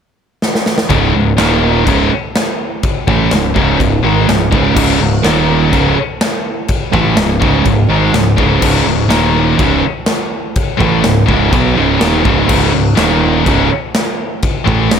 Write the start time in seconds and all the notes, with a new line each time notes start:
0.42 snare
0.55 snare
0.66 snare
0.78 snare
0.90 C#1 C#2 G#2 C#3, kick, china
1.14 C#1 C#2 G#2
1.37 D#1 D#2 A#2 D#3, snare, china
1.85 C#1 C#2 G#2 C#3, kick, china
2.35 snare, china
2.83 kick, china
3.07 A1 A2 E3 A3, kick
3.31 C#1 C#2 G#2, snare, china
3.54 C#1 C#2 G#2 C#3, kick
3.78 C#1 C#2 G#2, kick, china
4.03 G#1 G#2 D#3 G#3
4.27 C#1 C#2 G#2, snare, china
4.51 C#1 C#2 G#2 C#3, kick
4.75 C#1 C#2 G#2 C#3, kick, china, crash
4.99 C#1 C#2 G#2
5.23 D#1 D#2 A#2 D#3, snare, china
5.72 C#1 C#2 G#2 C#3, kick, china
6.21 snare, china
6.68 kick, china
6.93 A1 A2 E3 A3, kick
7.17 C#1 C#2 G#2, snare, china
7.40 C#1 C#2 G#2 C#3, kick
7.65 C#1 C#2 G#2, kick, china
7.89 G#1 G#2 D#3 G#3
8.13 C#1 C#2 G#2, snare, china
8.37 C#1 C#2 G#2 C#3, kick
8.61 C#1 C#2 G#2 C#3, kick, china, crash
8.85 C#1 C#2 G#2
9.07 D#1 D#2 A#2 D#3, snare, china
9.58 C#1 C#2 G#2 C#3, kick, china
10.06 snare, china
10.56 kick, china
10.77 A1 A2 E3 A3, kick
11.02 C#1 C#2 G#2, snare, china
11.26 C#1 C#2 G#2 C#3, kick
11.52 B1 B2 F#3 B3, kick, china
11.74 C#1 C#2 G#2 C#3
11.98 D#1 D#2 A#2 D#3, snare, china
12.23 C#1 C#2 G#2 C#3, kick
12.47 C#1 C#2 G#2 C#3, kick, china, crash
12.72 C#1 C#2 G#2
12.95 D#1 D#2 A#2 D#3, snare, china
13.44 C#1 C#2 G#2 C#3, kick, china
13.94 snare, china
14.42 kick, china
14.65 A1 A2 E3 A3, kick
14.90 C#1 C#2 G#2, snare, china